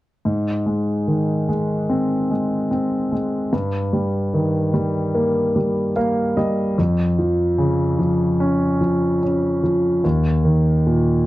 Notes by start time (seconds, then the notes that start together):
0.25 G#2
0.66 G#3
1.07 D#3
1.49 G#3
1.89 C4
2.31 G#3
2.71 C4
3.12 G#3
3.53 G2
3.93 G3
4.34 D#3
4.74 G3
5.15 A#3
5.56 G3
5.96 A#3 F5
6.37 G3 D#5
6.78 F2
7.19 F3
7.58 C#3
7.99 F3
8.40 C#4
8.81 F3
9.22 C#4
9.63 F3
10.04 D#2
10.44 D#3
10.87 A#2